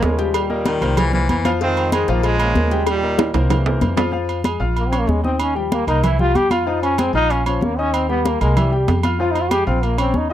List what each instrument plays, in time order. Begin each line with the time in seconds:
0.03 upright bass D#2, trombone section C#3 F3 G#3, grand piano A#3 A#4 C#5, cowbell, high conga, low timbale
0.18 grand piano G3 G4 G5, cowbell
0.34 trombone section A#2 D#3 G3, cowbell, high conga, low agogo
0.50 grand piano A#3 A#4 D#5, high conga
0.66 baritone saxophone D#3, cowbell, high conga, low agogo
0.82 upright bass C2, grand piano A#3 A#4 C5, high conga, low agogo
0.97 baritone saxophone E3, cowbell, high conga, low conga, low agogo
1.13 baritone saxophone E3, grand piano A#3 A#4 C5, high conga, low conga
1.29 upright bass F2, baritone saxophone E3, cowbell, high conga, low agogo
1.45 grand piano F3 F4 F5, high conga, low agogo
1.61 trombone section D#3 G#3 C4, grand piano F3 F4 F5, cowbell, high conga
1.77 high conga, low agogo
1.92 trombone section G#3, grand piano G#3 G#4 C5, cowbell, high conga, low agogo
2.08 upright bass A#1, grand piano F3 F4 F5, trombone section A#3, cowbell, high conga
2.23 trombone section C#3 F3 G#3, cowbell, high conga, low agogo
2.40 grand piano A#3 A#4 C#5, high conga, low agogo
2.55 upright bass D#2, grand piano A#3 A#4 C#5, cowbell, high conga
2.71 grand piano G3 G4 G5, cowbell
2.87 trombone section A#2 D#3 G3, cowbell, high bongo, high conga, low agogo
3.03 grand piano A#3 A#4 D#5, high conga
3.19 cowbell, high bongo, high conga, high timbale, low agogo
3.34 upright bass C2, grand piano A#3 A#4 C5, low bongo, high conga, high timbale, low agogo
3.50 trombone section G2 A#2 E3, cowbell, low bongo, high conga, low conga, high timbale, low agogo
3.66 grand piano A#3 A#4 C5, high conga, low timbale
3.81 upright bass F2, cowbell, low bongo, high conga, low agogo
3.97 grand piano F3 F4 F5, low bongo, high conga, low timbale, low agogo
4.12 grand piano F3 F4 F5, high conga
4.29 high conga, low agogo
4.44 grand piano G#3 G#4 G#5, high conga, low agogo
4.60 upright bass A#1, grand piano F4 F5 F6, high conga
4.77 trombone A#3, high conga, low agogo
4.88 trombone C4, grand piano C#4 C#5
4.92 grand piano C#6, high conga, low agogo
4.99 trombone A#3
5.07 upright bass D#2, trombone G#3, high conga
5.24 trombone C4, grand piano D#4 D#5 D#6, high conga
5.40 trombone C#4, high conga, low agogo
5.55 trombone F3, grand piano G3 G4 G5, high conga
5.72 trombone A#3, high conga, low agogo
5.87 upright bass C2, grand piano A#3 A#4 A#5, trombone D#4, high conga, low agogo
6.03 grand piano E3 E4 E5, trombone E4, high conga, low conga, low agogo
6.19 grand piano G3 G4 G5, trombone F4, high conga, low conga
6.34 upright bass F2, trombone G4, high conga, low agogo
6.51 grand piano F4 F5 F6, trombone F4, high conga, low agogo
6.67 grand piano F3 F4 F5, trombone D#4, high conga
6.83 trombone C#4, high conga, low agogo
6.98 grand piano G#3 G#4 G#5, trombone C4, high conga, low agogo
7.13 upright bass A#1, trombone D#4, grand piano F4 F5 F6, high conga
7.30 trombone C#4, high conga, low agogo
7.46 trombone F3, grand piano C#4 C#5 C#6, high conga, low agogo
7.61 upright bass D#2, trombone A#3, high conga
7.79 trombone C#4, grand piano D#4 D#5 D#6
7.94 trombone C4, high conga, low agogo
8.09 grand piano G3 G4 G5, trombone B3, high conga
8.26 trombone A#3, high conga, low agogo
8.41 upright bass C2, trombone G#3, grand piano A#3 A#4 A#5, high conga, low agogo
8.56 grand piano E3 E4 E5, trombone G3, high conga, low conga, low agogo
8.72 grand piano G3 G4 G5, high conga
8.88 upright bass F2, high conga, low timbale, low agogo
9.03 grand piano F4 F5 F6, high conga, low agogo
9.20 grand piano F3 F4 F5, trombone F4, high conga
9.31 trombone D#4, high conga
9.35 low agogo
9.41 trombone F4
9.51 grand piano G#3 G#4 G#5, trombone G4, high conga, low agogo
9.67 upright bass A#1, trombone C4, grand piano F4 F5 F6, high conga
9.83 trombone A#3, high conga, low agogo
9.98 trombone C4, grand piano C#4 C#5 C#6, high conga, low agogo
10.14 upright bass D#2, trombone D#4, high conga
10.30 grand piano D#4